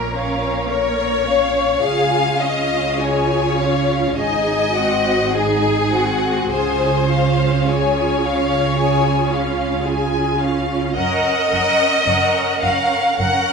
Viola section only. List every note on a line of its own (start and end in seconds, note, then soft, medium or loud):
0.10 0.69 C#4 soft
0.10 0.69 C#5 soft
0.68 1.25 A#3 soft
0.68 1.25 A#4 soft
1.24 1.82 C#4 soft
1.24 1.82 C#5 soft
1.81 2.37 F4 soft
1.81 2.37 G#4 soft
2.41 3.00 C#4 soft
2.41 2.98 F4 soft
3.00 3.57 F4 soft
3.00 3.59 G#4 soft
3.59 4.17 C#4 soft
3.59 4.17 F4 soft
4.18 4.72 D#4 soft
4.18 4.72 G#4 soft
4.76 5.34 C4 soft
4.76 5.34 F#4 soft
5.34 5.93 D#4 soft
5.34 5.93 G#4 soft
5.93 6.51 C4 soft
5.93 6.51 F#4 soft
6.52 7.05 F4 soft
6.52 7.05 G#4 soft
7.09 7.66 C#4 soft
7.09 7.65 F4 soft
7.66 8.22 F4 soft
7.66 8.22 G#4 soft
8.23 8.78 C#4 soft
8.23 8.76 F4 soft
8.77 9.27 F4 soft
8.77 9.27 G#4 soft
9.30 9.85 C#4 soft
9.30 9.83 F4 soft
9.84 10.38 F4 soft
9.84 10.40 G#4 soft
10.39 10.94 C#4 soft
10.39 10.95 F4 soft
10.95 11.49 C#4 soft
10.95 11.48 A#4 medium
11.49 12.04 C#4 soft
11.49 12.04 A#4 soft
12.05 12.59 C#4 soft
12.05 12.59 A#4 soft
12.60 13.15 C#4 soft
12.60 13.15 A#4 soft
13.16 13.53 C#4 soft
13.16 13.53 A#4 soft